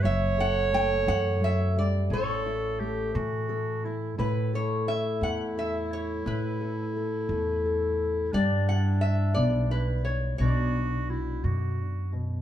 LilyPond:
<<
  \new Staff \with { instrumentName = "Resonator guitar played with a steel bar" } { \time 6/8 \key a \mixolydian \tempo 4. = 58 e''8 fis''8 g''8 fis''8 e''8 d''8 | cis''2 r4 | b'8 cis''8 e''8 fis''8 e''8 cis''8 | b'2 r4 |
d''8 fis''8 e''8 d''8 b'8 cis''8 | d''2~ d''8 r8 | }
  \new Staff \with { instrumentName = "Clarinet" } { \time 6/8 \key a \mixolydian cis''2~ cis''8 r8 | a'4 g'8 fis'4 e'8 | e'2.~ | e'2. |
d'2~ d'8 r8 | fis'4 e'8 fis'4 r8 | }
  \new Staff \with { instrumentName = "Steel-string acoustic guitar" } { \time 6/8 \key a \mixolydian << { r8 a'2~ a'8 | r8 e'4. a'8 e'8 | e'8 a'8 cis''4 a'4 | e'8 a'8 a'4 a'4 |
d'8 e'4. e'4 | d'8 fis'8 fis'2 | } \\ { fis4 a8 e8 fis8 g8 | a,4 a8 e4. | a,4. a4. | a,4. a4. |
g4. b4. | b,4. d8 r8 b,8 | } >> }
  \new Staff \with { instrumentName = "Upright bass" } { \clef bass \time 6/8 \key a \mixolydian fis,,4. fis,4. | a,,4. a,4. | a,4. e,4. | a,4. e,4. |
g,4. b,,4. | b,,4. fis,4. | }
>>